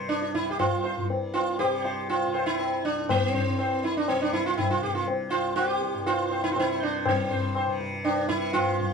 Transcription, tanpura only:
0, 0, Header, 1, 2, 480
1, 0, Start_track
1, 0, Key_signature, 0, "major"
1, 0, Tempo, 496689
1, 1055, Time_signature, 4, 2, 24, 8
1, 8635, End_track
2, 0, Start_track
2, 0, Title_t, "Tanpura"
2, 0, Program_c, 0, 104
2, 0, Note_on_c, 0, 36, 51
2, 0, Note_on_c, 0, 43, 54
2, 0, Note_on_c, 0, 48, 54
2, 374, Note_off_c, 0, 36, 0
2, 378, Note_on_c, 0, 36, 51
2, 973, Note_off_c, 0, 43, 0
2, 977, Note_on_c, 0, 43, 45
2, 1572, Note_off_c, 0, 48, 0
2, 1572, Note_on_c, 0, 48, 59
2, 2176, Note_off_c, 0, 48, 0
2, 2176, Note_on_c, 0, 48, 50
2, 2772, Note_off_c, 0, 36, 0
2, 2775, Note_on_c, 0, 36, 58
2, 3358, Note_off_c, 0, 43, 0
2, 3362, Note_on_c, 0, 43, 52
2, 3961, Note_off_c, 0, 48, 0
2, 3961, Note_on_c, 0, 48, 52
2, 4567, Note_off_c, 0, 48, 0
2, 4567, Note_on_c, 0, 48, 53
2, 5152, Note_off_c, 0, 36, 0
2, 5156, Note_on_c, 0, 36, 55
2, 5739, Note_off_c, 0, 43, 0
2, 5742, Note_on_c, 0, 43, 52
2, 6328, Note_off_c, 0, 48, 0
2, 6328, Note_on_c, 0, 48, 49
2, 6818, Note_off_c, 0, 43, 0
2, 6818, Note_on_c, 0, 43, 61
2, 7409, Note_off_c, 0, 48, 0
2, 7409, Note_on_c, 0, 48, 61
2, 8011, Note_off_c, 0, 48, 0
2, 8011, Note_on_c, 0, 48, 59
2, 8599, Note_off_c, 0, 36, 0
2, 8603, Note_on_c, 0, 36, 55
2, 8635, Note_off_c, 0, 36, 0
2, 8635, Note_off_c, 0, 43, 0
2, 8635, Note_off_c, 0, 48, 0
2, 8635, End_track
0, 0, End_of_file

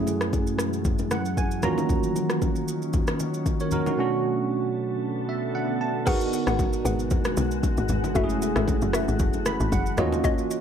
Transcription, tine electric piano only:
0, 0, Header, 1, 2, 480
1, 0, Start_track
1, 0, Tempo, 521739
1, 1742, Time_signature, 4, 2, 24, 8
1, 9758, End_track
2, 0, Start_track
2, 0, Title_t, "Tine electric piano"
2, 0, Program_c, 0, 4
2, 0, Note_on_c, 0, 42, 73
2, 0, Note_on_c, 0, 57, 68
2, 0, Note_on_c, 0, 61, 67
2, 0, Note_on_c, 0, 64, 66
2, 0, Note_on_c, 0, 68, 77
2, 21, Control_c, 0, 64, 127
2, 1026, Note_on_c, 0, 78, 71
2, 1248, Note_off_c, 0, 78, 0
2, 1267, Note_on_c, 0, 80, 77
2, 1464, Note_off_c, 0, 42, 0
2, 1471, Note_off_c, 0, 61, 0
2, 1474, Note_off_c, 0, 64, 0
2, 1477, Note_off_c, 0, 68, 0
2, 1488, Note_off_c, 0, 80, 0
2, 1493, Note_on_c, 0, 51, 74
2, 1496, Note_off_c, 0, 57, 0
2, 1500, Note_on_c, 0, 58, 70
2, 1506, Note_on_c, 0, 82, 75
2, 1507, Note_on_c, 0, 61, 69
2, 1513, Note_on_c, 0, 65, 70
2, 1514, Control_c, 0, 64, 0
2, 1520, Note_on_c, 0, 66, 82
2, 1696, Control_c, 0, 64, 127
2, 1728, Note_off_c, 0, 82, 0
2, 3154, Note_off_c, 0, 65, 0
2, 3158, Note_off_c, 0, 66, 0
2, 3319, Note_on_c, 0, 73, 68
2, 3324, Note_on_c, 0, 70, 55
2, 3381, Note_off_c, 0, 51, 0
2, 3384, Note_off_c, 0, 58, 0
2, 3388, Note_off_c, 0, 61, 0
2, 3416, Note_off_c, 0, 70, 0
2, 3419, Note_off_c, 0, 73, 0
2, 3427, Note_on_c, 0, 70, 73
2, 3432, Note_on_c, 0, 66, 62
2, 3548, Note_off_c, 0, 66, 0
2, 3550, Note_off_c, 0, 70, 0
2, 3559, Note_on_c, 0, 66, 65
2, 3565, Note_on_c, 0, 63, 57
2, 3654, Note_on_c, 0, 47, 71
2, 3661, Note_on_c, 0, 57, 67
2, 3668, Note_on_c, 0, 61, 70
2, 3670, Note_off_c, 0, 66, 0
2, 3674, Control_c, 0, 64, 0
2, 3674, Note_on_c, 0, 62, 68
2, 3681, Note_on_c, 0, 66, 80
2, 3788, Note_off_c, 0, 63, 0
2, 3843, Control_c, 0, 64, 127
2, 4866, Note_on_c, 0, 76, 70
2, 5087, Note_off_c, 0, 76, 0
2, 5105, Note_on_c, 0, 78, 74
2, 5327, Note_off_c, 0, 78, 0
2, 5345, Note_on_c, 0, 81, 72
2, 5542, Note_off_c, 0, 47, 0
2, 5545, Note_off_c, 0, 57, 0
2, 5548, Note_off_c, 0, 61, 0
2, 5552, Note_off_c, 0, 62, 0
2, 5555, Note_off_c, 0, 66, 0
2, 5567, Note_off_c, 0, 81, 0
2, 5572, Note_on_c, 0, 70, 79
2, 5581, Note_on_c, 0, 59, 71
2, 5590, Note_on_c, 0, 63, 70
2, 5596, Control_c, 0, 64, 0
2, 5599, Note_on_c, 0, 66, 83
2, 5768, Control_c, 0, 64, 127
2, 7461, Note_off_c, 0, 70, 0
2, 7465, Note_off_c, 0, 59, 0
2, 7470, Note_off_c, 0, 63, 0
2, 7474, Note_off_c, 0, 66, 0
2, 7493, Note_on_c, 0, 57, 76
2, 7503, Note_on_c, 0, 61, 70
2, 7511, Note_on_c, 0, 64, 68
2, 7515, Control_c, 0, 64, 0
2, 7520, Note_on_c, 0, 66, 66
2, 7575, Note_off_c, 0, 66, 0
2, 7578, Note_on_c, 0, 68, 86
2, 7679, Control_c, 0, 64, 127
2, 8706, Note_on_c, 0, 83, 74
2, 8928, Note_off_c, 0, 83, 0
2, 8946, Note_on_c, 0, 78, 76
2, 9144, Note_off_c, 0, 57, 0
2, 9149, Note_off_c, 0, 61, 0
2, 9154, Note_off_c, 0, 64, 0
2, 9168, Note_off_c, 0, 78, 0
2, 9173, Note_on_c, 0, 58, 79
2, 9182, Note_on_c, 0, 61, 70
2, 9187, Note_off_c, 0, 68, 0
2, 9187, Note_on_c, 0, 75, 76
2, 9191, Note_on_c, 0, 65, 74
2, 9196, Control_c, 0, 64, 0
2, 9201, Note_on_c, 0, 66, 90
2, 9361, Control_c, 0, 64, 127
2, 9408, Note_off_c, 0, 75, 0
2, 9758, Note_off_c, 0, 58, 0
2, 9758, Note_off_c, 0, 61, 0
2, 9758, Note_off_c, 0, 65, 0
2, 9758, Note_off_c, 0, 66, 0
2, 9758, End_track
0, 0, End_of_file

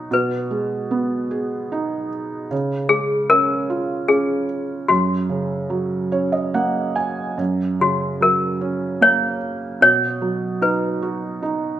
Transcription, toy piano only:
0, 0, Header, 1, 2, 480
1, 0, Start_track
1, 0, Key_signature, 6, "major"
1, 0, Tempo, 797872
1, 68, Time_signature, 3, 2, 24, 8
1, 2947, Tempo, 828729
1, 4867, Tempo, 802139
1, 7013, End_track
2, 0, Start_track
2, 0, Title_t, "Toy piano"
2, 0, Program_c, 0, 8
2, 0, Note_on_c, 0, 73, 73
2, 81, Note_on_c, 0, 71, 67
2, 86, Note_off_c, 0, 73, 0
2, 777, Note_off_c, 0, 71, 0
2, 1740, Note_on_c, 0, 68, 75
2, 1968, Note_off_c, 0, 68, 0
2, 1983, Note_on_c, 0, 70, 86
2, 2441, Note_off_c, 0, 70, 0
2, 2457, Note_on_c, 0, 68, 76
2, 2917, Note_off_c, 0, 68, 0
2, 2939, Note_on_c, 0, 66, 71
2, 3876, Note_off_c, 0, 66, 0
2, 4636, Note_on_c, 0, 66, 66
2, 4874, Note_on_c, 0, 70, 71
2, 4876, Note_off_c, 0, 66, 0
2, 5352, Note_on_c, 0, 73, 83
2, 5366, Note_off_c, 0, 70, 0
2, 5823, Note_off_c, 0, 73, 0
2, 5831, Note_on_c, 0, 73, 92
2, 6310, Note_on_c, 0, 71, 69
2, 6323, Note_off_c, 0, 73, 0
2, 7001, Note_off_c, 0, 71, 0
2, 7013, End_track
0, 0, End_of_file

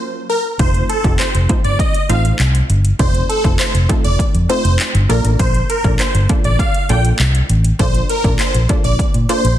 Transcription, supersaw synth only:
0, 0, Header, 1, 2, 480
1, 0, Start_track
1, 0, Key_signature, -2, "major"
1, 0, Tempo, 600000
1, 475, Time_signature, 4, 2, 24, 8
1, 7670, End_track
2, 0, Start_track
2, 0, Title_t, "Supersaw synth"
2, 0, Program_c, 0, 81
2, 236, Note_on_c, 0, 70, 78
2, 326, Note_off_c, 0, 70, 0
2, 477, Note_on_c, 0, 72, 99
2, 656, Note_off_c, 0, 72, 0
2, 715, Note_on_c, 0, 69, 76
2, 895, Note_off_c, 0, 69, 0
2, 954, Note_on_c, 0, 72, 86
2, 1045, Note_off_c, 0, 72, 0
2, 1316, Note_on_c, 0, 74, 81
2, 1406, Note_off_c, 0, 74, 0
2, 1436, Note_on_c, 0, 75, 93
2, 1616, Note_off_c, 0, 75, 0
2, 1678, Note_on_c, 0, 77, 86
2, 1767, Note_off_c, 0, 77, 0
2, 2395, Note_on_c, 0, 72, 99
2, 2575, Note_off_c, 0, 72, 0
2, 2634, Note_on_c, 0, 69, 84
2, 2815, Note_off_c, 0, 69, 0
2, 2875, Note_on_c, 0, 72, 85
2, 2965, Note_off_c, 0, 72, 0
2, 3235, Note_on_c, 0, 74, 88
2, 3325, Note_off_c, 0, 74, 0
2, 3596, Note_on_c, 0, 72, 84
2, 3776, Note_off_c, 0, 72, 0
2, 4077, Note_on_c, 0, 70, 78
2, 4167, Note_off_c, 0, 70, 0
2, 4314, Note_on_c, 0, 72, 100
2, 4495, Note_off_c, 0, 72, 0
2, 4556, Note_on_c, 0, 70, 83
2, 4736, Note_off_c, 0, 70, 0
2, 4798, Note_on_c, 0, 72, 86
2, 4887, Note_off_c, 0, 72, 0
2, 5159, Note_on_c, 0, 74, 85
2, 5247, Note_off_c, 0, 74, 0
2, 5278, Note_on_c, 0, 77, 91
2, 5457, Note_off_c, 0, 77, 0
2, 5518, Note_on_c, 0, 79, 85
2, 5607, Note_off_c, 0, 79, 0
2, 6236, Note_on_c, 0, 72, 105
2, 6416, Note_off_c, 0, 72, 0
2, 6476, Note_on_c, 0, 70, 83
2, 6656, Note_off_c, 0, 70, 0
2, 6717, Note_on_c, 0, 72, 86
2, 6807, Note_off_c, 0, 72, 0
2, 7076, Note_on_c, 0, 74, 82
2, 7166, Note_off_c, 0, 74, 0
2, 7435, Note_on_c, 0, 72, 80
2, 7615, Note_off_c, 0, 72, 0
2, 7670, End_track
0, 0, End_of_file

